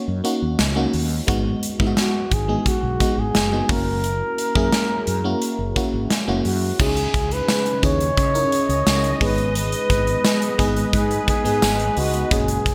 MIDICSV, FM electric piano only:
0, 0, Header, 1, 2, 480
1, 0, Start_track
1, 0, Tempo, 689655
1, 891, Time_signature, 4, 2, 24, 8
1, 8871, End_track
2, 0, Start_track
2, 0, Title_t, "FM electric piano"
2, 0, Program_c, 0, 5
2, 0, Control_c, 0, 64, 127
2, 0, Note_on_c, 0, 58, 84
2, 0, Note_on_c, 0, 61, 70
2, 0, Note_on_c, 0, 63, 74
2, 0, Note_on_c, 0, 66, 91
2, 97, Note_off_c, 0, 58, 0
2, 99, Note_off_c, 0, 61, 0
2, 99, Note_off_c, 0, 63, 0
2, 101, Note_off_c, 0, 66, 0
2, 166, Note_on_c, 0, 58, 89
2, 170, Note_on_c, 0, 61, 74
2, 172, Note_on_c, 0, 63, 81
2, 174, Note_on_c, 0, 66, 96
2, 456, Note_off_c, 0, 58, 0
2, 458, Note_off_c, 0, 61, 0
2, 459, Note_off_c, 0, 63, 0
2, 460, Note_off_c, 0, 66, 0
2, 526, Note_on_c, 0, 58, 85
2, 529, Note_on_c, 0, 61, 75
2, 532, Note_on_c, 0, 63, 81
2, 534, Note_on_c, 0, 66, 91
2, 816, Note_off_c, 0, 58, 0
2, 817, Note_off_c, 0, 61, 0
2, 819, Note_off_c, 0, 63, 0
2, 820, Note_off_c, 0, 66, 0
2, 885, Note_on_c, 0, 56, 90
2, 888, Note_on_c, 0, 59, 76
2, 891, Note_on_c, 0, 63, 75
2, 895, Note_on_c, 0, 66, 97
2, 901, Control_c, 0, 64, 0
2, 1004, Control_c, 0, 64, 127
2, 1176, Note_off_c, 0, 56, 0
2, 1177, Note_off_c, 0, 59, 0
2, 1179, Note_off_c, 0, 63, 0
2, 1181, Note_off_c, 0, 66, 0
2, 1247, Note_on_c, 0, 56, 72
2, 1250, Note_on_c, 0, 59, 68
2, 1252, Note_on_c, 0, 63, 66
2, 1254, Note_on_c, 0, 64, 62
2, 1298, Note_off_c, 0, 64, 0
2, 1300, Note_on_c, 0, 66, 77
2, 1633, Note_off_c, 0, 56, 0
2, 1634, Note_off_c, 0, 59, 0
2, 1635, Note_off_c, 0, 63, 0
2, 1659, Note_off_c, 0, 66, 0
2, 1727, Note_on_c, 0, 56, 71
2, 1729, Note_on_c, 0, 59, 61
2, 1732, Note_on_c, 0, 63, 62
2, 1735, Note_on_c, 0, 68, 75
2, 2017, Note_off_c, 0, 56, 0
2, 2018, Note_off_c, 0, 59, 0
2, 2019, Note_off_c, 0, 63, 0
2, 2021, Note_off_c, 0, 68, 0
2, 2089, Note_on_c, 0, 56, 71
2, 2091, Note_on_c, 0, 59, 62
2, 2095, Note_on_c, 0, 63, 66
2, 2098, Note_on_c, 0, 66, 80
2, 2378, Note_off_c, 0, 56, 0
2, 2379, Note_off_c, 0, 59, 0
2, 2380, Note_off_c, 0, 63, 0
2, 2382, Note_off_c, 0, 66, 0
2, 2449, Note_on_c, 0, 56, 69
2, 2453, Note_on_c, 0, 59, 64
2, 2455, Note_on_c, 0, 63, 68
2, 2458, Note_on_c, 0, 66, 76
2, 2566, Note_off_c, 0, 66, 0
2, 2567, Note_on_c, 0, 58, 69
2, 2570, Note_off_c, 0, 56, 0
2, 2570, Note_on_c, 0, 61, 65
2, 2572, Note_off_c, 0, 59, 0
2, 2572, Note_on_c, 0, 64, 62
2, 2573, Note_off_c, 0, 63, 0
2, 2575, Note_on_c, 0, 66, 75
2, 2579, Control_c, 0, 64, 0
2, 2686, Control_c, 0, 64, 127
2, 3049, Note_off_c, 0, 58, 0
2, 3050, Note_off_c, 0, 61, 0
2, 3051, Note_off_c, 0, 64, 0
2, 3053, Note_off_c, 0, 66, 0
2, 3169, Note_on_c, 0, 58, 82
2, 3171, Note_on_c, 0, 61, 78
2, 3174, Note_on_c, 0, 64, 79
2, 3177, Note_on_c, 0, 68, 89
2, 3553, Note_off_c, 0, 58, 0
2, 3555, Note_off_c, 0, 61, 0
2, 3556, Note_off_c, 0, 64, 0
2, 3557, Note_off_c, 0, 68, 0
2, 3649, Note_on_c, 0, 58, 82
2, 3652, Note_on_c, 0, 61, 73
2, 3655, Note_on_c, 0, 64, 74
2, 3657, Note_on_c, 0, 66, 88
2, 3938, Note_off_c, 0, 58, 0
2, 3939, Note_off_c, 0, 61, 0
2, 3941, Note_off_c, 0, 64, 0
2, 3942, Note_off_c, 0, 66, 0
2, 4007, Note_on_c, 0, 58, 85
2, 4010, Note_on_c, 0, 61, 78
2, 4013, Note_on_c, 0, 64, 78
2, 4015, Note_on_c, 0, 66, 92
2, 4297, Note_off_c, 0, 58, 0
2, 4298, Note_off_c, 0, 61, 0
2, 4300, Note_off_c, 0, 64, 0
2, 4301, Note_off_c, 0, 66, 0
2, 4367, Note_on_c, 0, 58, 82
2, 4370, Note_on_c, 0, 61, 73
2, 4373, Note_on_c, 0, 64, 77
2, 4375, Note_on_c, 0, 66, 91
2, 4656, Note_off_c, 0, 58, 0
2, 4658, Note_off_c, 0, 61, 0
2, 4660, Note_off_c, 0, 64, 0
2, 4661, Note_off_c, 0, 66, 0
2, 4727, Note_on_c, 0, 61, 70
2, 4729, Note_on_c, 0, 63, 66
2, 4732, Note_on_c, 0, 64, 67
2, 4735, Note_on_c, 0, 68, 78
2, 4741, Control_c, 0, 64, 0
2, 4878, Control_c, 0, 64, 127
2, 5304, Note_off_c, 0, 61, 0
2, 5305, Note_off_c, 0, 63, 0
2, 5307, Note_off_c, 0, 64, 0
2, 5308, Note_off_c, 0, 68, 0
2, 5444, Note_on_c, 0, 61, 70
2, 5448, Note_on_c, 0, 63, 67
2, 5450, Note_on_c, 0, 64, 64
2, 5453, Note_on_c, 0, 68, 78
2, 5735, Note_off_c, 0, 61, 0
2, 5737, Note_off_c, 0, 63, 0
2, 5738, Note_off_c, 0, 64, 0
2, 5740, Note_off_c, 0, 68, 0
2, 5806, Note_on_c, 0, 61, 71
2, 5807, Note_on_c, 0, 63, 60
2, 5811, Note_on_c, 0, 64, 63
2, 5813, Note_on_c, 0, 70, 74
2, 6403, Note_off_c, 0, 63, 0
2, 6406, Note_on_c, 0, 56, 69
2, 6408, Note_off_c, 0, 61, 0
2, 6409, Note_on_c, 0, 59, 64
2, 6411, Note_off_c, 0, 64, 0
2, 6412, Note_off_c, 0, 70, 0
2, 6412, Note_on_c, 0, 63, 64
2, 6414, Note_on_c, 0, 68, 77
2, 6421, Control_c, 0, 64, 0
2, 6544, Control_c, 0, 64, 127
2, 7176, Note_off_c, 0, 56, 0
2, 7178, Note_off_c, 0, 59, 0
2, 7179, Note_off_c, 0, 63, 0
2, 7181, Note_off_c, 0, 68, 0
2, 7365, Note_on_c, 0, 56, 82
2, 7369, Note_on_c, 0, 59, 82
2, 7371, Note_on_c, 0, 63, 80
2, 7374, Note_on_c, 0, 68, 96
2, 7847, Note_off_c, 0, 56, 0
2, 7849, Note_off_c, 0, 59, 0
2, 7850, Note_off_c, 0, 63, 0
2, 7852, Note_off_c, 0, 68, 0
2, 7965, Note_on_c, 0, 56, 73
2, 7968, Note_on_c, 0, 59, 68
2, 7970, Note_on_c, 0, 63, 70
2, 7974, Note_on_c, 0, 68, 82
2, 8447, Note_off_c, 0, 56, 0
2, 8449, Note_off_c, 0, 59, 0
2, 8450, Note_off_c, 0, 63, 0
2, 8452, Note_off_c, 0, 68, 0
2, 8568, Note_on_c, 0, 46, 72
2, 8572, Note_on_c, 0, 61, 68
2, 8574, Note_on_c, 0, 66, 68
2, 8577, Note_on_c, 0, 68, 79
2, 8580, Control_c, 0, 64, 0
2, 8689, Control_c, 0, 64, 127
2, 8871, Note_off_c, 0, 46, 0
2, 8871, Note_off_c, 0, 61, 0
2, 8871, Note_off_c, 0, 66, 0
2, 8871, Note_off_c, 0, 68, 0
2, 8871, End_track
0, 0, End_of_file